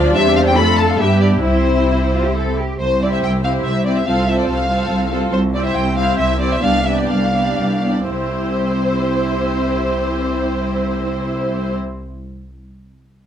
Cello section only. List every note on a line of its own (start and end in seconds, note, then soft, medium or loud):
0.00 0.56 D4 medium
0.58 1.00 A4 medium
1.00 1.44 G4 soft
1.45 1.85 E4 soft
1.91 1.99 E4 soft
2.13 2.24 F4 soft
2.25 2.35 G4 soft
2.36 2.57 A4 soft
2.58 2.80 G4 soft
2.80 3.18 C2 soft
3.23 3.60 C2 soft
3.65 4.02 C2 soft
4.07 4.44 C2 soft
4.49 4.86 C2 soft
4.91 5.28 C2 soft
5.33 5.70 C2 soft
5.76 6.14 C2 soft
6.19 6.58 C2 soft
6.64 7.04 C2 soft
7.10 7.53 C2 soft
7.58 8.04 C2 soft
8.10 11.76 C2 soft